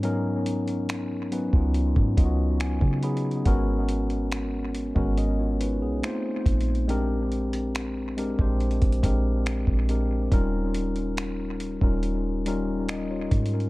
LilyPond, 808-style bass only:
\new Staff \with { instrumentName = "808-style bass" } { \clef bass \time 4/4 \key gis \dorian \tempo 4 = 70 gis,4.~ gis,16 cis,8 gis,16 cis,8. cis8. | gis,,4.~ gis,,16 gis,,4 b,,16 r8 ais,,8~ | ais,,4.~ ais,,16 ais,,8 ais,,16 ais,,8. ais,,8. | dis,,4.~ dis,,16 dis,,4.~ dis,,16 gis,8 | }